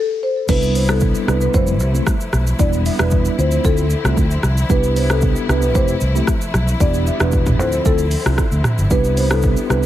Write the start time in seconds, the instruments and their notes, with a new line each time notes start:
0.23 marimba C5
0.49 fingered electric bass C2, string section C3 G3 B3 E4, tine electric piano G3 B3 D4 E4, marimba B4, kick, crash, shaker
0.62 shaker
0.75 marimba C5, open hi-hat, shaker
0.89 tine electric piano G3 B3 D4 E4, marimba A4, cross-stick, shaker
1.00 kick, shaker
1.15 shaker
1.28 fingered electric bass C2, tine electric piano G3 B3 D4 E4, marimba B4, cross-stick, shaker
1.41 marimba B4, shaker
1.54 fingered electric bass F1, string section F3 A3 E4, tine electric piano G3 A3 C4 E4, marimba C5, kick, shaker
1.67 shaker
1.80 fingered electric bass C2, shaker
1.94 tine electric piano G3 A3 C4 E4, shaker
2.07 kick, cross-stick, shaker
2.20 shaker
2.33 fingered electric bass B1, cross-stick, shaker
2.47 shaker
2.59 fingered electric bass E1, string section D3 G3 B3, tine electric piano G3 B3 D4 E4, marimba D5, kick, shaker
2.73 shaker
2.86 marimba E5, open hi-hat, shaker
2.99 fingered electric bass E1, tine electric piano G3 B3 D4 E4, marimba B4, cross-stick, shaker
3.11 kick, shaker
3.25 shaker
3.38 fingered electric bass D2, string section D3 F3 C4, tine electric piano A3 C4 E4 F4, marimba C5, shaker
3.51 marimba C5, shaker
3.64 fingered electric bass D2, tine electric piano A3 C4 E4 F4, marimba A4, kick, shaker
3.77 shaker
3.90 shaker
4.04 fingered electric bass C2, tine electric piano A3 C4 E4 F4, cross-stick, shaker
4.17 fingered electric bass D2, kick, shaker
4.31 shaker
4.43 fingered electric bass C2, cross-stick, shaker
4.57 shaker
4.69 fingered electric bass C2, string section C3 G3 B3, tine electric piano B3 D4 E4 G4, marimba B4, kick, shaker
4.83 shaker
4.96 marimba C5, open hi-hat, shaker
5.10 tine electric piano B3 D4 E4 G4, marimba A4, cross-stick, shaker
5.21 kick, shaker
5.36 shaker
5.49 fingered electric bass C2, tine electric piano B3 D4 E4 G4, marimba B4, cross-stick, shaker
5.62 marimba B4, shaker
5.75 fingered electric bass F1, string section F3 A3, tine electric piano A3 C4 E4 G4, marimba C5, kick, shaker
5.88 shaker
6.01 fingered electric bass C2, shaker
6.15 tine electric piano A3 C4 E4 G4, shaker
6.27 kick, cross-stick, shaker
6.41 shaker
6.54 fingered electric bass B1, cross-stick, shaker
6.68 shaker
6.80 fingered electric bass E1, string section D3 G3 B3, tine electric piano B3 D4 E4 G4, marimba D5, kick, shaker
6.94 shaker
7.07 marimba E5, shaker
7.20 fingered electric bass E1, tine electric piano B3 D4 E4 G4, marimba B4, cross-stick, shaker
7.32 kick, shaker
7.46 kick, mid tom, shaker
7.59 fingered electric bass D2, string section F3 C4, tine electric piano C4 E4 F4 A4, marimba C5, shaker
7.72 marimba C5, shaker
7.85 fingered electric bass D2, tine electric piano C4 E4 F4 A4, marimba A4, kick, shaker
7.98 shaker
8.11 open hi-hat, shaker
8.25 fingered electric bass C2, tine electric piano C4 E4 F4 A4, cross-stick, shaker
8.38 kick, cross-stick, shaker
8.52 fingered electric bass D2, shaker
8.64 cross-stick, mid tom, shaker
8.78 fingered electric bass G1, shaker
8.90 fingered electric bass C2, string section C3 G3 B3, tine electric piano B3 D4 E4 G4, marimba B4, kick, shaker
9.04 shaker
9.17 marimba C5, open hi-hat, shaker
9.31 tine electric piano B3 D4 E4 G4, marimba A4, cross-stick, shaker
9.42 kick, shaker
9.57 shaker
9.70 fingered electric bass C2, tine electric piano B3 D4 E4 G4, marimba B4, cross-stick, shaker